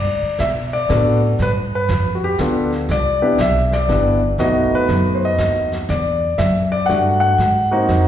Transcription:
Already playing: upright bass G2, grand piano D5
0.22 muted upright bass stroke
0.38 upright bass B2, grand piano E5, snare, hi-hat pedal
0.73 grand piano D5
0.89 upright bass A2, grand piano B3 D4 F#4 A4, snare
1.38 upright bass G2, grand piano B4, brush sweep, snare
1.75 grand piano B4
1.88 upright bass F2, snare, hi-hat pedal
2.15 grand piano F#4
2.24 grand piano G4
2.38 upright bass D2, grand piano B3 D4 F4 A4, snare, hi-hat pedal
2.72 snare
2.89 upright bass C2, grand piano D5, brush sweep, snare
3.22 grand piano B3 D4 E4 G4
3.38 upright bass B1, grand piano E5, snare, hi-hat pedal
3.72 grand piano D5, snare
3.89 upright bass G1, grand piano B3 D4 E4 G4, snare
4.38 upright bass B1, grand piano A3 B3 D#4 F#4 D#5, brush sweep, snare
4.72 grand piano B4, muted upright bass stroke
4.88 upright bass F#2, snare
5.15 grand piano C5
5.25 grand piano D#5
5.38 upright bass D#2, snare, hi-hat pedal
5.72 snare
5.88 upright bass E2, grand piano D5, brush sweep, snare
6.38 upright bass F#2, grand piano E5, snare, hi-hat pedal
6.72 grand piano D5
6.86 upright bass G2, grand piano G3 A3 D4 F#4 F#5, snare
7.20 grand piano F#5
7.38 upright bass G#2, brush sweep, snare
7.71 grand piano A#3 C4 D#4 F#4
7.89 upright bass F2, snare

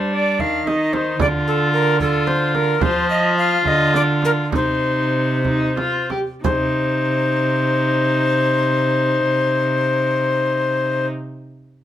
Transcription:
Already playing: cello G3, viola D4, recorder C5
0.13 recorder D5
0.39 cello D#3, recorder F5, frame drum
0.67 viola D#4, recorder D#5, frame drum
0.93 recorder C5, frame drum
1.20 cello D3, viola F4, recorder D5, frame drum
1.47 recorder A4
1.73 recorder A#4
2.00 viola F4, recorder A4, frame drum
2.27 recorder C5, frame drum
2.55 recorder A#4, frame drum
2.81 cello F3, viola F4, recorder C5, frame drum
3.10 recorder D#5
3.38 recorder F5
3.65 cello D3, recorder D#5, frame drum
3.94 recorder D5, frame drum
4.22 recorder A#4, frame drum
4.52 cello C3, viola D#4, recorder C5, frame drum
5.45 viola D#4, frame drum
5.77 viola F4, frame drum
6.10 viola G4, frame drum
6.44 cello C3, viola D#4, recorder C5, frame drum

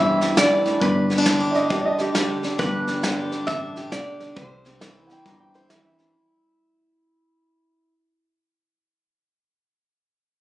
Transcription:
Already playing: upright bass G1, steel-string acoustic guitar G2 E3 G3 C4 E4, resonator guitar played with a steel bar E5
0.21 steel-string acoustic guitar E4, snare
0.37 steel-string acoustic guitar B2, resonator guitar played with a steel bar D5, snare, hi-hat pedal
0.66 steel-string acoustic guitar A2, snare
0.81 upright bass G1, steel-string acoustic guitar G2, resonator guitar played with a steel bar B4, kick, snare
1.10 steel-string acoustic guitar B3, snare
1.18 steel-string acoustic guitar D4, snare
1.26 steel-string acoustic guitar D3 E4, snare, hi-hat pedal
1.40 steel-string acoustic guitar G4
1.51 upright piano D5, snare
1.55 steel-string acoustic guitar D4, upright piano D#5
1.70 upright bass D2, steel-string acoustic guitar G2, upright piano G4, kick, snare
1.81 upright piano D5
1.86 upright piano D#5
1.98 steel-string acoustic guitar G4, upright piano G4, snare
2.15 steel-string acoustic guitar D3, upright piano G4, snare, hi-hat pedal
2.43 steel-string acoustic guitar D4, snare
2.59 upright bass G1, steel-string acoustic guitar G2, resonator guitar played with a steel bar B4, kick, snare
2.87 steel-string acoustic guitar D4, snare
3.03 steel-string acoustic guitar D3 G4, snare, hi-hat pedal
3.32 steel-string acoustic guitar D4, snare
3.47 upright bass A1, steel-string acoustic guitar G2, resonator guitar played with a steel bar E5, kick, snare
3.76 steel-string acoustic guitar G4, snare
3.92 upright bass B1, steel-string acoustic guitar D3, resonator guitar played with a steel bar D5, snare, hi-hat pedal
4.20 steel-string acoustic guitar D4, snare
4.36 upright bass C2, steel-string acoustic guitar C3, resonator guitar played with a steel bar C5, kick, snare
4.65 steel-string acoustic guitar C4, snare
4.81 steel-string acoustic guitar E3 E4, snare, hi-hat pedal
5.07 steel-string acoustic guitar C4, upright piano F#5, snare
5.12 upright piano G5
5.26 upright bass G1, steel-string acoustic guitar G2, upright piano A#5, kick, snare
5.40 upright piano G5
5.54 steel-string acoustic guitar E4, upright piano C5, snare
5.69 steel-string acoustic guitar E3, upright piano E5, snare, hi-hat pedal
5.98 steel-string acoustic guitar C4, snare

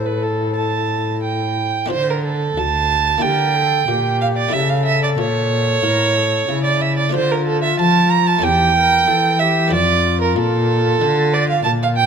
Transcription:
Already playing: cello A2, harpsichord C4 E4, flute A4
0.05 violin B4
0.23 violin A4
0.55 violin A5
1.24 violin G5
1.86 harpsichord A3 D4 F4
1.90 harpsichord D3, cello D3, violin C5
2.10 violin A#4
2.24 violin A4
2.57 harpsichord D2, cello D2, violin A5
3.18 harpsichord A#3 E4 G4, violin G5
3.22 harpsichord D3, cello D3, flute A#4
3.56 flute A4
3.88 harpsichord A#2, cello A#2, flute G4
4.21 violin F5
4.37 violin D5
4.49 harpsichord A3 E4 G4, violin E5
4.53 harpsichord C#3, cello C#3, flute A4
4.69 violin F5
4.85 violin E5
5.03 violin D5
5.18 harpsichord A#2, cello A#2, violin C#5
5.83 harpsichord A2, cello A2, flute A#4
6.16 flute A4
6.48 harpsichord C#3, cello C#3, flute E4
6.64 violin D5
6.81 violin E5
6.97 violin D5
7.09 harpsichord A3 D4 F4
7.14 cello D3, harpsichord D3, flute F4, violin C5
7.31 violin A#4
7.46 violin A4
7.63 violin E5
7.78 cello F3, harpsichord F3, violin A5
8.11 violin A#5
8.27 violin A5
8.39 harpsichord A3 C#4 A4
8.43 cello E2, harpsichord E2, flute G4, violin G5
8.75 flute A#4
9.07 cello E3, harpsichord E3, flute A4
9.39 flute G4, violin E5
9.68 cello F2, harpsichord A3 D4 A4
9.72 harpsichord F2, flute F4, violin D5
10.21 violin A#4
10.36 harpsichord A#2, cello A#2, violin A4
11.01 cello D3, harpsichord D3
11.34 violin D5
11.49 violin F5
11.63 harpsichord A#2, cello A#2, violin A5
11.83 violin F5
11.96 violin G5

